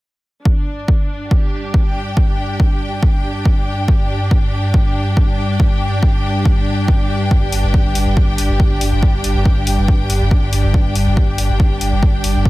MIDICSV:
0, 0, Header, 1, 5, 480
1, 0, Start_track
1, 0, Tempo, 428571
1, 510, Time_signature, 4, 2, 24, 8
1, 13997, End_track
2, 0, Start_track
2, 0, Title_t, "String section"
2, 0, Program_c, 0, 48
2, 505, Note_on_c, 0, 62, 79
2, 1454, Note_on_c, 0, 67, 74
2, 2051, Note_on_c, 0, 79, 78
2, 13997, Note_off_c, 0, 62, 0
2, 13997, Note_off_c, 0, 67, 0
2, 13997, Note_off_c, 0, 79, 0
2, 13997, End_track
3, 0, Start_track
3, 0, Title_t, "Synth drone"
3, 0, Program_c, 1, 95
3, 507, Note_on_c, 1, 43, 71
3, 13997, Note_off_c, 1, 43, 0
3, 13997, End_track
4, 0, Start_track
4, 0, Title_t, "Sub bass"
4, 0, Program_c, 2, 38
4, 8314, Note_on_c, 2, 31, 75
4, 8421, Note_off_c, 2, 31, 0
4, 8428, Note_on_c, 2, 31, 101
4, 8548, Note_off_c, 2, 31, 0
4, 8554, Note_on_c, 2, 31, 80
4, 8667, Note_off_c, 2, 31, 0
4, 8794, Note_on_c, 2, 31, 76
4, 8902, Note_off_c, 2, 31, 0
4, 8908, Note_on_c, 2, 31, 98
4, 9026, Note_off_c, 2, 31, 0
4, 9033, Note_on_c, 2, 31, 83
4, 9146, Note_off_c, 2, 31, 0
4, 9275, Note_on_c, 2, 31, 79
4, 9381, Note_off_c, 2, 31, 0
4, 9388, Note_on_c, 2, 31, 96
4, 9507, Note_off_c, 2, 31, 0
4, 9514, Note_on_c, 2, 31, 83
4, 9626, Note_off_c, 2, 31, 0
4, 9754, Note_on_c, 2, 31, 76
4, 9860, Note_off_c, 2, 31, 0
4, 9867, Note_on_c, 2, 31, 101
4, 9987, Note_off_c, 2, 31, 0
4, 9994, Note_on_c, 2, 31, 77
4, 10106, Note_off_c, 2, 31, 0
4, 10233, Note_on_c, 2, 31, 72
4, 10341, Note_off_c, 2, 31, 0
4, 10348, Note_on_c, 2, 31, 104
4, 10468, Note_off_c, 2, 31, 0
4, 10475, Note_on_c, 2, 31, 79
4, 10587, Note_off_c, 2, 31, 0
4, 10715, Note_on_c, 2, 31, 77
4, 10822, Note_off_c, 2, 31, 0
4, 10829, Note_on_c, 2, 31, 96
4, 10947, Note_off_c, 2, 31, 0
4, 10954, Note_on_c, 2, 31, 81
4, 11067, Note_off_c, 2, 31, 0
4, 11195, Note_on_c, 2, 31, 78
4, 11302, Note_off_c, 2, 31, 0
4, 11308, Note_on_c, 2, 31, 99
4, 11427, Note_off_c, 2, 31, 0
4, 11434, Note_on_c, 2, 31, 83
4, 11547, Note_off_c, 2, 31, 0
4, 11674, Note_on_c, 2, 31, 75
4, 11782, Note_off_c, 2, 31, 0
4, 11788, Note_on_c, 2, 31, 99
4, 11908, Note_off_c, 2, 31, 0
4, 11915, Note_on_c, 2, 31, 83
4, 12027, Note_off_c, 2, 31, 0
4, 12155, Note_on_c, 2, 31, 74
4, 12261, Note_off_c, 2, 31, 0
4, 12268, Note_on_c, 2, 31, 103
4, 12388, Note_off_c, 2, 31, 0
4, 12394, Note_on_c, 2, 31, 79
4, 12507, Note_off_c, 2, 31, 0
4, 12634, Note_on_c, 2, 31, 76
4, 12742, Note_off_c, 2, 31, 0
4, 12749, Note_on_c, 2, 31, 100
4, 12869, Note_off_c, 2, 31, 0
4, 12875, Note_on_c, 2, 31, 79
4, 12987, Note_off_c, 2, 31, 0
4, 13114, Note_on_c, 2, 31, 76
4, 13221, Note_off_c, 2, 31, 0
4, 13228, Note_on_c, 2, 31, 100
4, 13348, Note_off_c, 2, 31, 0
4, 13355, Note_on_c, 2, 31, 81
4, 13467, Note_off_c, 2, 31, 0
4, 13594, Note_on_c, 2, 31, 74
4, 13702, Note_off_c, 2, 31, 0
4, 13709, Note_on_c, 2, 31, 95
4, 13830, Note_off_c, 2, 31, 0
4, 13837, Note_on_c, 2, 31, 79
4, 13948, Note_off_c, 2, 31, 0
4, 13997, End_track
5, 0, Start_track
5, 0, Title_t, "Drums"
5, 509, Note_on_c, 9, 36, 115
5, 621, Note_off_c, 9, 36, 0
5, 989, Note_on_c, 9, 36, 113
5, 1101, Note_off_c, 9, 36, 0
5, 1468, Note_on_c, 9, 36, 122
5, 1580, Note_off_c, 9, 36, 0
5, 1949, Note_on_c, 9, 36, 115
5, 2061, Note_off_c, 9, 36, 0
5, 2429, Note_on_c, 9, 36, 122
5, 2541, Note_off_c, 9, 36, 0
5, 2909, Note_on_c, 9, 36, 118
5, 3021, Note_off_c, 9, 36, 0
5, 3389, Note_on_c, 9, 36, 127
5, 3501, Note_off_c, 9, 36, 0
5, 3869, Note_on_c, 9, 36, 120
5, 3981, Note_off_c, 9, 36, 0
5, 4349, Note_on_c, 9, 36, 126
5, 4461, Note_off_c, 9, 36, 0
5, 4829, Note_on_c, 9, 36, 118
5, 4941, Note_off_c, 9, 36, 0
5, 5309, Note_on_c, 9, 36, 124
5, 5421, Note_off_c, 9, 36, 0
5, 5789, Note_on_c, 9, 36, 122
5, 5901, Note_off_c, 9, 36, 0
5, 6269, Note_on_c, 9, 36, 121
5, 6381, Note_off_c, 9, 36, 0
5, 6749, Note_on_c, 9, 36, 119
5, 6861, Note_off_c, 9, 36, 0
5, 7229, Note_on_c, 9, 36, 125
5, 7341, Note_off_c, 9, 36, 0
5, 7708, Note_on_c, 9, 36, 121
5, 7820, Note_off_c, 9, 36, 0
5, 8188, Note_on_c, 9, 36, 120
5, 8300, Note_off_c, 9, 36, 0
5, 8428, Note_on_c, 9, 46, 99
5, 8540, Note_off_c, 9, 46, 0
5, 8668, Note_on_c, 9, 36, 113
5, 8780, Note_off_c, 9, 36, 0
5, 8908, Note_on_c, 9, 46, 89
5, 9020, Note_off_c, 9, 46, 0
5, 9148, Note_on_c, 9, 36, 117
5, 9260, Note_off_c, 9, 36, 0
5, 9389, Note_on_c, 9, 46, 106
5, 9501, Note_off_c, 9, 46, 0
5, 9629, Note_on_c, 9, 36, 119
5, 9741, Note_off_c, 9, 36, 0
5, 9869, Note_on_c, 9, 46, 88
5, 9981, Note_off_c, 9, 46, 0
5, 10109, Note_on_c, 9, 36, 113
5, 10221, Note_off_c, 9, 36, 0
5, 10350, Note_on_c, 9, 46, 100
5, 10462, Note_off_c, 9, 46, 0
5, 10589, Note_on_c, 9, 36, 106
5, 10701, Note_off_c, 9, 36, 0
5, 10830, Note_on_c, 9, 46, 85
5, 10942, Note_off_c, 9, 46, 0
5, 11070, Note_on_c, 9, 36, 110
5, 11182, Note_off_c, 9, 36, 0
5, 11310, Note_on_c, 9, 46, 99
5, 11422, Note_off_c, 9, 46, 0
5, 11550, Note_on_c, 9, 36, 118
5, 11662, Note_off_c, 9, 36, 0
5, 11790, Note_on_c, 9, 46, 82
5, 11902, Note_off_c, 9, 46, 0
5, 12030, Note_on_c, 9, 36, 109
5, 12142, Note_off_c, 9, 36, 0
5, 12269, Note_on_c, 9, 46, 95
5, 12381, Note_off_c, 9, 46, 0
5, 12510, Note_on_c, 9, 36, 109
5, 12622, Note_off_c, 9, 36, 0
5, 12749, Note_on_c, 9, 46, 88
5, 12861, Note_off_c, 9, 46, 0
5, 12989, Note_on_c, 9, 36, 114
5, 13101, Note_off_c, 9, 36, 0
5, 13228, Note_on_c, 9, 46, 101
5, 13340, Note_off_c, 9, 46, 0
5, 13469, Note_on_c, 9, 36, 112
5, 13581, Note_off_c, 9, 36, 0
5, 13708, Note_on_c, 9, 46, 88
5, 13820, Note_off_c, 9, 46, 0
5, 13949, Note_on_c, 9, 36, 114
5, 13997, Note_off_c, 9, 36, 0
5, 13997, End_track
0, 0, End_of_file